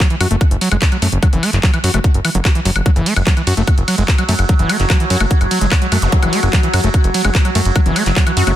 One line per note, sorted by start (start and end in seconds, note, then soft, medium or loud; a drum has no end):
0.00 0.08 F#3 loud
0.00 kick loud
0.00 clap loud
0.00 closed hi-hat medium
0.10 0.15 E3 medium
0.10 closed hi-hat medium
0.21 0.26 F#2 medium
0.21 0.28 F#4 medium
0.21 open hi-hat loud
0.21 high woodblock medium
0.31 0.36 F#1 medium
0.31 0.36 A3 medium
0.31 closed hi-hat medium
0.41 kick loud
0.41 closed hi-hat medium
0.41 high woodblock soft
0.51 0.57 F#1 medium
0.51 closed hi-hat medium
0.61 0.69 F#3 loud
0.61 open hi-hat loud
0.72 0.77 F#1 medium
0.72 0.77 G#3 medium
0.72 closed hi-hat soft
0.72 high woodblock medium
0.82 kick loud
0.82 clap loud
0.82 closed hi-hat medium
0.92 0.97 F#3 medium
0.92 closed hi-hat medium
0.92 high woodblock soft
1.02 1.08 F#2 loud
1.02 1.07 A3 medium
1.02 open hi-hat loud
1.12 1.18 F#1 medium
1.12 closed hi-hat medium
1.23 1.28 F#3 medium
1.23 kick loud
1.23 closed hi-hat medium
1.23 high woodblock medium
1.33 1.38 F#1 medium
1.33 1.44 E3 medium
1.33 closed hi-hat medium
1.43 1.50 A3 medium
1.43 open hi-hat loud
1.43 high woodblock soft
1.53 1.59 F#1 medium
1.53 clap soft
1.53 closed hi-hat medium
1.63 1.71 F#3 loud
1.63 kick loud
1.63 clap loud
1.63 closed hi-hat medium
1.74 1.79 E3 medium
1.74 closed hi-hat soft
1.74 high woodblock medium
1.84 1.89 F#2 medium
1.84 1.91 F#4 medium
1.84 open hi-hat loud
1.94 2.00 F#1 medium
1.94 1.99 A3 medium
1.94 closed hi-hat medium
1.94 high woodblock soft
2.04 kick loud
2.04 closed hi-hat medium
2.14 2.20 F#1 medium
2.14 closed hi-hat medium
2.25 2.30 E3 medium
2.25 open hi-hat loud
2.25 high woodblock medium
2.35 2.40 F#1 medium
2.35 2.38 F#3 medium
2.35 closed hi-hat soft
2.45 2.50 F#4 loud
2.45 kick loud
2.45 clap loud
2.45 closed hi-hat medium
2.45 high woodblock soft
2.55 2.60 E3 medium
2.55 closed hi-hat medium
2.65 2.71 F#1 loud
2.65 2.70 F#3 medium
2.65 open hi-hat loud
2.76 2.81 F#1 medium
2.76 closed hi-hat medium
2.76 high woodblock medium
2.86 2.91 F#3 medium
2.86 8.56 F#3 medium
2.86 kick loud
2.86 closed hi-hat medium
2.86 high woodblock soft
2.96 3.02 F#1 medium
2.96 3.08 E3 medium
2.96 closed hi-hat medium
3.06 3.14 A3 medium
3.06 open hi-hat loud
3.06 ride medium
3.16 3.22 F#1 medium
3.16 closed hi-hat medium
3.16 high woodblock medium
3.27 3.34 F#3 loud
3.27 kick loud
3.27 clap loud
3.27 closed hi-hat medium
3.37 3.42 E3 medium
3.37 closed hi-hat medium
3.37 high woodblock soft
3.47 3.53 F#2 medium
3.47 3.55 F#4 medium
3.47 open hi-hat loud
3.47 ride medium
3.57 3.63 F#1 medium
3.57 3.62 A3 medium
3.57 closed hi-hat medium
3.67 kick loud
3.67 closed hi-hat medium
3.67 high woodblock medium
3.78 3.83 F#1 medium
3.78 closed hi-hat medium
3.88 3.95 F#3 loud
3.88 open hi-hat loud
3.88 ride medium
3.88 high woodblock soft
3.98 4.04 F#1 medium
3.98 4.03 G#3 medium
3.98 closed hi-hat soft
4.08 kick loud
4.08 clap loud
4.08 closed hi-hat medium
4.18 4.23 F#3 medium
4.18 closed hi-hat medium
4.18 high woodblock medium
4.29 4.34 F#2 loud
4.29 4.34 A3 medium
4.29 open hi-hat loud
4.29 ride medium
4.39 4.45 F#1 medium
4.39 closed hi-hat medium
4.39 high woodblock soft
4.49 4.54 F#3 medium
4.49 kick loud
4.49 closed hi-hat medium
4.59 4.65 F#1 medium
4.59 4.71 E3 medium
4.59 closed hi-hat medium
4.69 4.77 A3 medium
4.69 open hi-hat loud
4.69 ride medium
4.69 high woodblock medium
4.80 4.85 F#1 medium
4.80 clap soft
4.80 closed hi-hat medium
4.90 4.97 F#3 loud
4.90 kick loud
4.90 clap loud
4.90 closed hi-hat medium
4.90 high woodblock soft
5.00 5.05 E3 medium
5.00 closed hi-hat medium
5.10 5.16 F#2 loud
5.10 5.18 F#4 medium
5.10 open hi-hat loud
5.10 ride medium
5.21 5.26 F#1 medium
5.21 5.26 A3 medium
5.21 closed hi-hat medium
5.21 high woodblock medium
5.31 kick loud
5.31 closed hi-hat medium
5.41 5.47 F#1 medium
5.41 closed hi-hat medium
5.41 high woodblock soft
5.51 5.59 F#3 loud
5.51 open hi-hat loud
5.51 ride medium
5.61 5.67 F#1 medium
5.61 5.66 G#3 medium
5.61 closed hi-hat medium
5.72 kick loud
5.72 clap loud
5.72 closed hi-hat medium
5.72 high woodblock medium
5.82 5.87 F#3 medium
5.82 closed hi-hat medium
5.92 5.98 F#2 medium
5.92 5.97 A3 medium
5.92 open hi-hat loud
5.92 ride medium
5.92 high woodblock soft
6.02 6.08 F#1 medium
6.02 closed hi-hat medium
6.02 zap medium
6.12 6.17 F#3 medium
6.12 kick loud
6.12 closed hi-hat medium
6.23 6.28 F#1 medium
6.23 6.34 E3 medium
6.23 closed hi-hat medium
6.23 high woodblock medium
6.33 6.40 A3 medium
6.33 open hi-hat loud
6.33 ride medium
6.43 6.49 F#1 medium
6.43 closed hi-hat medium
6.43 high woodblock soft
6.53 6.61 F#3 loud
6.53 kick loud
6.53 clap loud
6.53 closed hi-hat medium
6.63 6.68 E3 medium
6.63 closed hi-hat medium
6.74 6.79 F#2 medium
6.74 6.81 F#4 medium
6.74 open hi-hat loud
6.74 ride medium
6.74 high woodblock medium
6.84 6.89 F#1 medium
6.84 6.89 A3 medium
6.84 closed hi-hat medium
6.94 kick loud
6.94 closed hi-hat medium
6.94 high woodblock soft
7.04 7.10 F#1 medium
7.04 closed hi-hat medium
7.14 7.22 F#3 loud
7.14 open hi-hat loud
7.14 ride medium
7.25 7.30 F#1 medium
7.25 7.30 G#3 medium
7.25 closed hi-hat medium
7.25 high woodblock medium
7.35 kick loud
7.35 clap loud
7.35 closed hi-hat medium
7.45 7.50 F#3 medium
7.45 closed hi-hat medium
7.45 high woodblock soft
7.55 7.61 F#2 medium
7.55 7.60 A3 medium
7.55 open hi-hat loud
7.55 ride medium
7.65 7.71 F#1 medium
7.65 closed hi-hat medium
7.76 7.81 F#3 medium
7.76 kick loud
7.76 closed hi-hat medium
7.76 high woodblock medium
7.86 7.92 F#1 medium
7.86 7.98 E3 medium
7.86 closed hi-hat medium
7.96 8.04 A3 medium
7.96 open hi-hat loud
7.96 ride medium
7.96 high woodblock soft
8.06 8.12 F#1 medium
8.06 clap soft
8.06 closed hi-hat medium
8.16 8.24 F#3 loud
8.16 kick loud
8.16 clap loud
8.16 closed hi-hat medium
8.27 8.32 E3 medium
8.27 closed hi-hat medium
8.27 high woodblock medium
8.37 8.43 F#2 medium
8.37 8.44 F#4 medium
8.37 open hi-hat loud
8.37 ride medium
8.47 8.53 F#1 medium
8.47 8.52 A3 medium
8.47 closed hi-hat medium
8.47 high woodblock soft